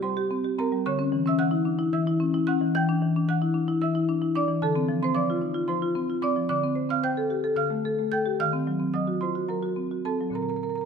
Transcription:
Already playing: C3
0.02 G3 C5 C6
0.17 G4
0.31 C4
0.44 G4
0.59 C4 A#4 A#5
0.72 G3
0.86 D3 C#5 C#6
0.99 C#4
1.12 E3
1.26 C#4 E5 E6
1.38 E3 F#5 F#6
1.51 E4
1.65 D4
1.79 E4
1.93 E3 E5 E6
2.07 E4
2.20 C#4
2.34 E4
2.47 C#4 F#5 F#6
2.61 E3
2.75 E3 G5 G6
2.89 D4
3.02 E3
3.16 D4
3.29 E3 F#5 F#6
3.42 E4
3.54 D4
3.68 E4
3.82 E3 E5 E6
3.95 E4
4.09 D4
4.22 E4
4.35 D4 D5 D6
4.48 E3
4.62 D3 A4 A5
4.75 C4
4.89 F3
5.02 C4 C5 C6
5.15 F3 D5 D6
5.30 F4
5.41 D#4
5.54 F4
5.68 F3 C5 C6
5.82 F4
5.95 C4
6.10 F4
6.22 C4 D5 D6
6.36 F3
6.49 D3 D5 D6
6.63 C4
6.75 C5
6.89 C4 F5 F6
7.03 C5 G5 G6
7.17 A4
7.30 G4
7.44 A4
7.56 D3 F5 F6
7.70 A3
7.85 A4
7.99 A3
8.12 A4 G5 G6
8.26 G4
8.40 D#3 F5 F6
8.53 C4
8.67 F#3
8.80 C4
8.94 F#3 D#5 D#6
9.07 F#4
9.21 F4 C5 C6
9.35 F#4
9.49 F#3 A#4 A#5
9.63 F#4
9.76 C4
9.91 F#4
10.05 C4 A4 A5
10.21 F#3
10.30 A#2 D3 C4
10.35 A#4 A#5
10.42 A#4 A#5
10.49 A#4 A#5
10.56 A#4 A#5
10.63 A#4 A#5
10.69 A#4 A#5
10.76 A#4 A#5
10.81 A#5

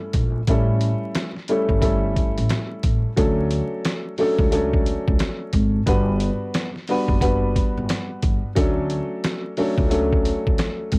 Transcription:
Already playing: G3 A3 C#4 E4 A4
0.13 A#1, kick, closed hi-hat
0.47 A1 G3 A3 C#4 E4 A4, kick, closed hi-hat
0.81 closed hi-hat
1.15 snare, closed hi-hat
1.36 snare
1.48 G3 A3 C#4 E4 A4, closed hi-hat
1.69 G1, kick
1.81 G3 A3 C#4 E4 A4, kick, closed hi-hat
2.16 kick, closed hi-hat
2.38 A1, closed hi-hat
2.50 snare, closed hi-hat
2.83 A1, kick, closed hi-hat
3.16 D2 F#3 A3 C#4 D4 A4, kick, closed hi-hat
3.51 closed hi-hat
3.85 snare, closed hi-hat
4.18 F#3 A3 C#4 D4 A4, open hi-hat
4.39 C#2, kick
4.51 F#3 A3 C#4 D4 A4, closed hi-hat
4.73 kick
4.86 closed hi-hat
5.08 C#2, kick
5.19 snare, closed hi-hat
5.53 G#1, kick, closed hi-hat
5.86 G1 G3 B3 D4 F#4 B4, kick, closed hi-hat
6.20 closed hi-hat
6.54 snare, closed hi-hat
6.76 snare
6.87 G3 B3 D4 F#4 B4, open hi-hat
7.08 F#1, kick
7.21 G3 B3 D4 F#4 B4, kick, closed hi-hat
7.56 kick, closed hi-hat
7.77 G1
7.89 snare, closed hi-hat
8.22 G1, kick, closed hi-hat
8.55 D2 F#3 A3 C#4 D4 A4, kick, closed hi-hat
8.90 closed hi-hat
9.24 snare, closed hi-hat
9.57 F#3 A3 C#4 D4 A4, open hi-hat
9.78 C#2, kick
9.90 F#3 A3 C#4 D4 A4, closed hi-hat
10.13 kick
10.25 closed hi-hat
10.47 C#2, kick
10.58 snare, closed hi-hat
10.92 G#1, kick, closed hi-hat

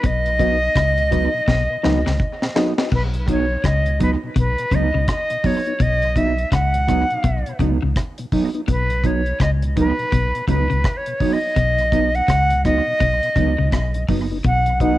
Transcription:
0.03 B1 B2 D#5, kick, closed hi-hat
0.26 B2, closed hi-hat
0.39 F#3 B3 D#4 F#4 B4 D#5, kick, closed hi-hat
0.76 C#2 C#3, kick, cross-stick, closed hi-hat
0.98 B2, closed hi-hat
1.11 F#3 B3 D#4 F#4 B4 D#5, kick, closed hi-hat
1.34 B2
1.48 B1 B2, kick, snare
1.70 B2 B4 D#5
1.83 C#2 C#3 F#3 B3 D#4 F#4 B4 D#5, snare
2.06 C#2 B2 C#3, snare
2.20 kick
2.42 B2, snare
2.56 F#3 B3 D#4 F#4 B4 D#5, snare
2.78 B3 D#4 F#4 B4 D#5, snare
2.91 B1 B2 B4, kick, crash
3.14 B2, closed hi-hat
3.28 F#3 B3 D#4 C#5, kick, closed hi-hat
3.64 C#2 C#3 D#5, kick, cross-stick, closed hi-hat
3.86 B2, closed hi-hat
4.00 F#3 B3 D#4 B4, kick, closed hi-hat
4.24 B2
4.36 B1 B2 B4, kick, closed hi-hat
4.58 B2, closed hi-hat
4.71 C#2 C#3 F#3 B3 D#4 D#5, kick, closed hi-hat
4.94 C#2 B2 C#3
5.08 D#5, kick, cross-stick, closed hi-hat
5.30 B2, muted clean electric guitar stroke, closed hi-hat
5.44 F#3 B3 D#4 C#5, kick, open hi-hat
5.66 B3 D#4, closed hi-hat
5.80 B1 B2 D#5, kick, closed hi-hat
6.02 B2, closed hi-hat
6.16 F#3 B3 D#4 E5, kick, closed hi-hat
6.38 closed hi-hat
6.52 C#2 C#3 F#5, kick, cross-stick, closed hi-hat
6.74 B2, closed hi-hat
6.87 F#3 B3 D#4, kick, cross-stick, closed hi-hat
7.10 B2, closed hi-hat
7.24 B1 B2, kick, closed hi-hat
7.46 B2, closed hi-hat
7.59 C#2 C#3 F#3 B3 D#4, kick, closed hi-hat
7.82 C#2 B2 C#3
7.96 kick, cross-stick, closed hi-hat
8.18 B2, muted clean electric guitar stroke, closed hi-hat
8.32 F#3 B3 D#4, kick, open hi-hat
8.54 B3 D#4, closed hi-hat
8.68 B1 B2 B4, kick, closed hi-hat
8.90 B2, closed hi-hat
9.04 F#3 B3 D#4 C#5, kick, closed hi-hat
9.26 closed hi-hat
9.40 C#2 C#3 D#5, kick, cross-stick, closed hi-hat
9.62 B2, closed hi-hat
9.76 F#3 B3 D#4 B4, kick, closed hi-hat
9.99 B2, closed hi-hat
10.12 B1 B2, kick, closed hi-hat
10.35 B2, closed hi-hat
10.48 C#2 C#3 F#3 B3 D#4 B4, kick, closed hi-hat
10.70 C#2 B2 C#3, closed hi-hat
10.84 kick, cross-stick, closed hi-hat
10.97 C#5
11.06 B2, closed hi-hat
11.20 F#3 B3 D#4, kick, open hi-hat
11.33 D#5
11.56 B1 B2, kick, closed hi-hat
11.79 B2, closed hi-hat
11.92 F#3 B3 D#4, kick, closed hi-hat
12.15 F#5, closed hi-hat
12.28 C#2 C#3, kick, cross-stick, closed hi-hat
12.50 B2, closed hi-hat
12.65 F#3 B3 D#4 D#5, kick, cross-stick, closed hi-hat
12.87 B2
13.00 B1 B2, kick, closed hi-hat
13.22 B2, closed hi-hat
13.36 C#2 C#3 F#3 B3 D#4, kick, closed hi-hat
13.58 C#2 B2 C#3
13.72 B1 B2, kick, cross-stick, closed hi-hat
13.94 B2, muted clean electric guitar stroke, closed hi-hat
14.08 F#1 F#2 F#3 B3 D#4, kick, open hi-hat
14.31 B3 D#4
14.44 B1 B2 F#5, kick, closed hi-hat
14.66 B2, closed hi-hat
14.80 F#3 B3 D#4 F#4 B4 D#5 F#5, kick, closed hi-hat

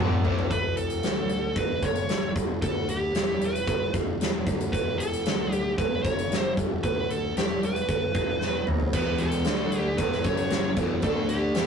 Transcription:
Already playing: E2 B2 E3
0.00 E1
0.24 A1 A2 E3 A3, floor tom
0.39 floor tom
0.51 E1 B4, kick, closed hi-hat
0.77 A4, closed hi-hat
0.90 closed hi-hat
1.03 D2, snare, closed hi-hat
1.29 closed hi-hat
1.56 E1 B4, kick, closed hi-hat
1.83 F#1 C#5, kick, closed hi-hat
1.95 closed hi-hat
2.09 snare, closed hi-hat
2.36 E1, kick, closed hi-hat
2.62 D2 A4, kick, closed hi-hat
2.89 G4, closed hi-hat
3.13 E1, snare, closed hi-hat
3.40 E1, closed hi-hat
3.45 B4
3.55 closed hi-hat
3.67 G1, kick, closed hi-hat
3.94 E1, kick, closed hi-hat
4.21 snare, closed hi-hat
4.47 D2, kick, closed hi-hat
4.61 closed hi-hat
4.72 E1 B4, kick, closed hi-hat
4.98 A4, closed hi-hat
5.13 closed hi-hat
5.25 D2, snare, closed hi-hat
5.52 G4, closed hi-hat
5.78 E1 B4, kick, closed hi-hat
6.03 F#1 C#5, kick, closed hi-hat
6.18 closed hi-hat
6.32 snare, closed hi-hat
6.39 C5
6.57 E1, kick, closed hi-hat
6.83 D2 B4, kick, closed hi-hat
7.10 A4, closed hi-hat
7.36 E1 G4, snare, closed hi-hat
7.62 E1 B4, closed hi-hat
7.76 closed hi-hat
7.89 G1, kick, closed hi-hat
8.14 E1, kick, closed hi-hat
8.41 snare
8.67 D2, mid tom
8.80 floor tom
8.93 E1 E2 B2 E3 B4, kick, closed hi-hat, crash
9.18 A4, closed hi-hat
9.31 closed hi-hat
9.44 D2 D3 A3 D4, snare, closed hi-hat
9.72 closed hi-hat
9.78 G4
9.98 E1 E2 B2 E3 B4, kick, closed hi-hat
10.12 snare
10.24 F#1 F#2 C#3 F#3 C#5, kick, closed hi-hat
10.37 closed hi-hat
10.50 snare, closed hi-hat
10.76 E1 E2 B2 E3, kick, closed hi-hat
11.02 D2 D3 A3 D4 A4, kick, closed hi-hat
11.29 G4, closed hi-hat
11.55 E1 E2 B2 E3, snare, closed hi-hat

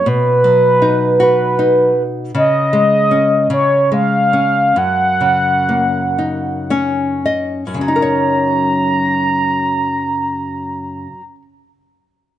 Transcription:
Already playing: C#5
0.06 B2 B4
0.44 F#3
0.82 D#4
1.20 F#4 B4
1.59 D#4
2.35 C#3 D#5
2.73 G#3
3.11 C#4
3.50 C#3 C#5
3.92 G#3 F5
4.33 C#4
4.76 F#2 F#5
5.21 C#3
5.69 A#3
6.19 D#4
6.70 C#4 C#5
7.26 D#5
7.67 F#2
7.74 C#3
7.81 F#3 A#5
7.88 D#4
7.96 A#4
8.02 C#5

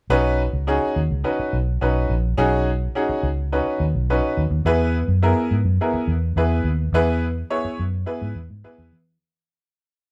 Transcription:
0.10 B1 C#4 D#4 F#4 B4
0.53 C#2
0.67 C#4 D#4 F#4 G#4
0.96 D#2
1.11 C#2
1.24 C#4 D#4 F#4 B4
1.39 muted fingered electric bass stroke
1.53 B1
1.81 B1 C#4 D#4 F#4 B4
2.10 A#1
2.37 B1 C#4 D#4 F#4 G#4
2.95 C#4 D#4 F#4 G#4
3.09 muted fingered electric bass stroke
3.23 C#2
3.52 C#4 D#4 F#4 B4
3.80 D#2
3.95 B1
4.10 C#4 D#4 F#4 B4
4.37 D#2
4.51 D#2
4.65 E2 B3 E4 G#4 B4
5.08 F#2
5.22 B3 E4 G#4 A#4
5.51 G#2
5.65 F#2
5.81 B3 E4 G#4 A#4
5.94 muted fingered electric bass stroke
6.08 E2
6.36 E2 B3 E4 G#4 B4
6.64 D#2
6.93 E2 B3 E4 G#4 B4
7.50 B3 E4 G#4 C#5
7.65 muted fingered electric bass stroke
7.79 F#2
8.06 B3 E4 G#4 B4
8.22 G#2
8.35 E2
8.50 G#2
8.64 B3 E4 G#4 B4
8.78 E2
8.92 E3

